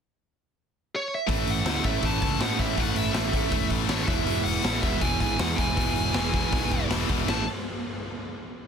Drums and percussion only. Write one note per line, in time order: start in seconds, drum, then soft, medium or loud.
1.29 kick loud
1.29 open hi-hat medium
1.47 open hi-hat medium
1.66 snare loud
1.66 open hi-hat medium
1.84 kick medium
1.84 open hi-hat medium
2.02 kick medium
2.02 open hi-hat medium
2.22 kick medium
2.22 open hi-hat medium
2.40 snare loud
2.40 open hi-hat medium
2.59 kick medium
2.59 open hi-hat medium
2.77 kick loud
2.77 open hi-hat medium
2.96 open hi-hat medium
3.14 snare loud
3.14 open hi-hat medium
3.33 kick medium
3.33 open hi-hat medium
3.51 kick loud
3.51 open hi-hat medium
3.70 kick medium
3.70 open hi-hat medium
3.89 snare loud
3.89 open hi-hat medium
4.08 kick medium
4.08 open hi-hat medium
4.27 open hi-hat medium
4.46 open hi-hat medium
4.64 snare loud
4.64 open hi-hat medium
4.83 kick medium
4.83 open hi-hat medium
5.01 kick loud
5.01 open hi-hat medium
5.20 kick medium
5.20 open hi-hat medium
5.39 snare loud
5.39 open hi-hat medium
5.58 kick medium
5.58 open hi-hat medium
5.77 kick loud
5.77 open hi-hat medium
5.96 open hi-hat medium
6.14 snare loud
6.14 open hi-hat medium
6.33 kick medium
6.33 open hi-hat medium
6.52 kick loud
6.52 open hi-hat medium
6.71 kick medium
6.71 open hi-hat soft
6.90 snare loud
6.90 open hi-hat medium
7.09 kick medium
7.09 open hi-hat medium
7.28 snare medium
7.28 crash medium